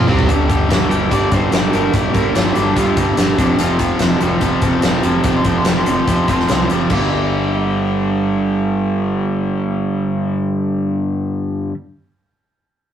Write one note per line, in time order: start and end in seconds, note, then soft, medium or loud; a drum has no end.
0.07 0.27 C2 medium
0.07 0.27 C3 medium
0.07 0.28 G3 medium
0.07 0.28 C4 medium
0.07 floor tom medium
0.19 floor tom loud
0.28 0.61 G1 medium
0.28 0.48 G2 medium
0.28 0.48 D3 medium
0.28 0.49 G3 loud
0.28 kick loud
0.28 closed hi-hat medium
0.48 0.68 G2 medium
0.48 0.68 D3 medium
0.48 0.69 G3 medium
0.48 kick medium
0.48 closed hi-hat medium
0.69 0.86 G1 medium
0.69 0.89 G2 medium
0.69 0.89 D3 medium
0.69 0.90 G3 loud
0.69 snare loud
0.69 closed hi-hat medium
0.90 1.07 G1 medium
0.90 1.10 G2 medium
0.90 1.11 D3 medium
0.90 1.11 G3 medium
0.90 1.10 G5 loud
0.90 closed hi-hat medium
1.11 1.28 G1 medium
1.11 1.30 G2 medium
1.11 1.31 D3 medium
1.11 1.31 G3 medium
1.11 1.32 D5 medium
1.11 kick medium
1.11 closed hi-hat medium
1.32 1.48 G1 medium
1.32 1.51 G2 medium
1.32 1.52 D3 medium
1.32 1.52 G3 medium
1.32 1.53 C5 loud
1.32 kick medium
1.32 closed hi-hat medium
1.52 1.69 G1 medium
1.52 1.73 G2 medium
1.52 1.74 D3 medium
1.52 1.74 G3 loud
1.52 1.74 D5 medium
1.52 snare loud
1.52 closed hi-hat medium
1.73 1.90 G1 medium
1.73 1.93 G2 medium
1.73 1.94 D3 medium
1.73 1.94 G3 medium
1.73 1.93 A#4 medium
1.73 closed hi-hat medium
1.93 2.10 G1 medium
1.93 2.13 G2 medium
1.93 2.13 D3 loud
1.93 2.13 G3 loud
1.93 2.14 G4 medium
1.93 kick loud
1.93 closed hi-hat medium
2.14 2.31 G1 medium
2.14 2.33 G2 medium
2.14 2.33 D3 medium
2.14 2.33 G3 medium
2.14 2.34 A#4 medium
2.14 kick medium
2.14 closed hi-hat medium
2.34 2.52 G1 medium
2.34 2.54 G2 loud
2.34 2.54 D3 medium
2.34 2.55 G3 loud
2.34 2.54 F4 medium
2.34 snare loud
2.34 closed hi-hat medium
2.55 2.73 G1 medium
2.55 2.75 G2 medium
2.55 2.76 D3 medium
2.55 2.76 G3 medium
2.55 2.75 D4 medium
2.55 closed hi-hat medium
2.76 2.96 G2 medium
2.76 2.93 G2 medium
2.76 2.96 D3 medium
2.76 2.96 G3 medium
2.76 2.97 F4 medium
2.76 kick medium
2.76 closed hi-hat medium
2.97 3.13 G1 medium
2.97 3.17 G2 medium
2.97 3.17 D3 medium
2.97 3.17 G3 medium
2.97 kick medium
2.97 closed hi-hat medium
3.17 3.34 G1 medium
3.17 3.37 G2 medium
3.17 3.37 D3 medium
3.17 3.38 G3 medium
3.17 snare medium
3.17 closed hi-hat medium
3.38 3.55 F1 medium
3.38 3.59 F2 loud
3.38 3.59 C3 medium
3.38 3.59 F3 medium
3.38 3.59 D4 medium
3.38 kick medium
3.38 closed hi-hat medium
3.59 3.92 F1 medium
3.59 3.79 F2 medium
3.59 3.78 C3 loud
3.59 3.80 F3 medium
3.59 4.00 F4 medium
3.59 closed hi-hat medium
3.79 4.00 F2 medium
3.79 3.99 C3 medium
3.79 4.01 F3 medium
3.79 kick medium
3.79 closed hi-hat medium
3.99 4.17 F1 medium
3.99 4.20 F2 medium
3.99 4.20 C3 medium
3.99 4.21 F3 medium
3.99 snare loud
3.99 closed hi-hat medium
4.20 4.38 F1 medium
4.20 4.39 F2 medium
4.20 4.40 C3 medium
4.20 4.40 F3 medium
4.20 closed hi-hat medium
4.40 4.58 F1 medium
4.40 4.60 F2 medium
4.40 4.60 C3 medium
4.40 4.60 F3 loud
4.40 kick medium
4.40 closed hi-hat medium
4.61 4.79 F1 medium
4.61 4.79 F2 medium
4.61 4.80 C3 medium
4.61 4.80 F3 medium
4.61 kick medium
4.61 closed hi-hat medium
4.80 5.00 F1 medium
4.80 5.01 F2 medium
4.80 5.01 C3 medium
4.80 5.02 F3 medium
4.80 snare loud
4.80 closed hi-hat medium
5.02 5.20 F1 medium
5.02 5.22 F2 medium
5.02 5.22 C3 medium
5.02 5.22 F3 medium
5.02 closed hi-hat medium
5.23 5.41 F1 medium
5.23 5.44 F2 medium
5.23 5.44 C3 medium
5.23 5.44 F3 loud
5.23 5.36 G5 medium
5.23 kick medium
5.23 closed hi-hat medium
5.36 5.46 C6 medium
5.44 5.62 F1 medium
5.44 5.64 F2 medium
5.44 5.64 C3 medium
5.44 5.64 F3 medium
5.44 5.56 G5 medium
5.44 kick medium
5.44 closed hi-hat medium
5.57 5.67 C6 medium
5.65 5.83 F1 medium
5.65 5.83 F2 medium
5.65 5.84 C3 medium
5.65 5.84 F3 loud
5.65 5.77 G5 medium
5.65 snare loud
5.65 closed hi-hat medium
5.78 5.86 C6 medium
5.84 6.04 F1 medium
5.84 6.05 F2 medium
5.84 6.05 C3 medium
5.84 6.06 F3 medium
5.84 6.68 C6 medium
5.84 closed hi-hat medium
6.06 6.27 F2 medium
6.06 6.24 F2 medium
6.06 6.27 C3 medium
6.06 6.28 F3 medium
6.06 kick medium
6.06 closed hi-hat medium
6.28 6.45 F1 medium
6.28 6.49 F2 medium
6.28 6.49 C3 medium
6.28 6.50 F3 medium
6.28 kick medium
6.28 closed hi-hat medium
6.40 snare soft
6.49 6.66 C2 medium
6.49 6.69 F2 medium
6.49 6.70 C3 medium
6.49 6.70 F3 medium
6.49 snare loud
6.49 closed hi-hat medium
6.70 6.87 F#1 medium
6.70 6.89 F2 medium
6.70 6.90 C3 medium
6.70 6.90 F3 medium
6.70 closed hi-hat medium
6.90 11.69 G1 medium
6.90 11.72 G2 medium
6.90 11.73 D3 medium
6.90 11.74 G3 medium
6.90 kick medium
6.90 crash medium